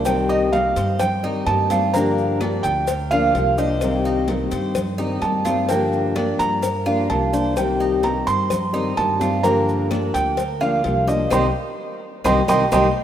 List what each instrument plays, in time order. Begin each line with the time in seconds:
Already playing: upright bass C2, cuban tres C5
0.05 steel-string acoustic guitar C3 D#3 G3 C4 G4, felt piano G5, cowbell, claves, maracas
0.29 cuban tres D#4, felt piano D#5, high conga, maracas
0.52 steel-string acoustic guitar D#3 G3 C4 G4, felt piano F5, cowbell, high conga, maracas
0.76 upright bass G2, cuban tres C5, cowbell, high conga, maracas
0.99 felt piano G5, muted steel-string acoustic guitar stroke, cowbell, high conga, low conga, claves, maracas
1.23 steel-string acoustic guitar D#3 G3 C4 G4, cuban tres D#4, high conga, maracas
1.46 upright bass G2, steel-string acoustic guitar D#3 G3 C4 G4, felt piano A5, cowbell, high conga, claves, maracas
1.70 steel-string acoustic guitar D#3 G3 C4 G4, cuban tres F4, cowbell, high conga, maracas
1.94 steel-string acoustic guitar D3 F3 A#3 D4 G4, cuban tres A#3, felt piano A#5, cowbell, high conga, maracas
2.18 maracas
2.41 steel-string acoustic guitar F3 A#3 D4 G4, cuban tres D4, cowbell, high conga, claves, maracas
2.63 upright bass D2, felt piano G5, cowbell, maracas
2.87 cuban tres A#4, muted steel-string acoustic guitar stroke, cowbell, high conga, maracas
3.11 steel-string acoustic guitar F3 A#3 D4 G4, cuban tres F4, felt piano F5, high conga, claves, maracas
3.35 upright bass C2, steel-string acoustic guitar F3 A#3 D4 G4, cowbell, high conga, maracas
3.58 steel-string acoustic guitar F3 A#3 D4 G4, cuban tres C5, felt piano D#5, maracas
3.81 steel-string acoustic guitar C3 D#3 G3 C4 G4, cowbell, high conga, claves, maracas
4.05 cuban tres D#4, high conga, maracas
4.28 steel-string acoustic guitar D#3 G3 C4 G4, cowbell, high conga, maracas
4.51 upright bass G2, cuban tres C5, cowbell, high conga, maracas
4.75 muted steel-string acoustic guitar stroke, cowbell, high conga, low conga, claves, maracas
4.98 steel-string acoustic guitar D#3 G3 C4 G4, cuban tres D#4, high conga, maracas
5.22 upright bass G2, steel-string acoustic guitar D#3 G3 C4 G4, felt piano A5, cowbell, high conga, claves, maracas
5.45 steel-string acoustic guitar D#3 G3 C4 G4, cuban tres F4, cowbell, high conga, maracas
5.69 steel-string acoustic guitar D3 F3 A#3 D4 G4, cuban tres A#3, felt piano G5, cowbell, high conga, maracas
5.92 high conga, maracas
6.16 steel-string acoustic guitar F3 A#3 D4 G4, cuban tres D4, cowbell, high conga, claves, maracas
6.39 upright bass G2, felt piano A#5, cowbell, high conga, maracas
6.62 cuban tres A#4, muted steel-string acoustic guitar stroke, cowbell, high conga, maracas
6.86 steel-string acoustic guitar F3 A#3 D4 G4, cuban tres F4, high conga, claves, maracas
7.10 upright bass C2, steel-string acoustic guitar F3 A#3 D4 G4, felt piano A5, cowbell, high conga, maracas
7.33 steel-string acoustic guitar F3 A#3 D4 G4, cuban tres C5, maracas
7.56 steel-string acoustic guitar C3 D#3 G3 C4 G4, felt piano G5, cowbell, high conga, claves, maracas
7.80 cuban tres D#4, high conga, maracas
8.03 steel-string acoustic guitar D#3 G3 C4 G4, felt piano A#5, cowbell, high conga, maracas
8.27 upright bass G2, cuban tres C5, felt piano C6, cowbell, high conga, maracas
8.50 muted steel-string acoustic guitar stroke, cowbell, high conga, low conga, claves, maracas
8.73 steel-string acoustic guitar D#3 G3 C4 G4, cuban tres D#4, high conga, maracas
8.96 upright bass G2, steel-string acoustic guitar D#3 G3 C4 G4, felt piano A5, cowbell, high conga, claves, maracas
9.19 steel-string acoustic guitar D#3 G3 C4 G4, cuban tres F4, cowbell, high conga, maracas
9.43 steel-string acoustic guitar D3 F3 A#3 D4 G4, cuban tres A#3, felt piano A#5, cowbell, maracas
9.68 high conga, maracas
9.91 steel-string acoustic guitar F3 A#3 D4 G4, cuban tres D4, cowbell, high conga, claves, maracas
10.14 upright bass D2, felt piano G5, cowbell, maracas
10.37 cuban tres A#4, muted steel-string acoustic guitar stroke, cowbell, maracas
10.61 steel-string acoustic guitar F3 A#3 D4 G4, cuban tres F4, felt piano F5, high conga, claves, maracas
10.84 upright bass C2, steel-string acoustic guitar F3 A#3 D4 G4, cowbell, high conga, maracas
11.07 steel-string acoustic guitar F3 A#3 D4 G4, cuban tres C5, felt piano D#5, high conga, maracas
11.30 upright bass C2, steel-string acoustic guitar D#3 G3 C4, cuban tres C4 D#4 G4, felt piano D#5 G5 C6, cowbell, high conga, claves, maracas
12.24 upright bass C2, steel-string acoustic guitar D#3 G3 C4, cuban tres C4 D#4 G4, felt piano D#5 G5 C6, cowbell, high conga, claves, maracas
12.48 upright bass C2, steel-string acoustic guitar D#3 G3 C4, cuban tres C4 D#4 G4, felt piano D#5 G5 C6, cowbell, high conga, claves, maracas
12.71 upright bass C2, steel-string acoustic guitar D#3 G3 C4, cuban tres C4 D#4 G4, felt piano D#5 G5 C6, cowbell, high conga, claves, maracas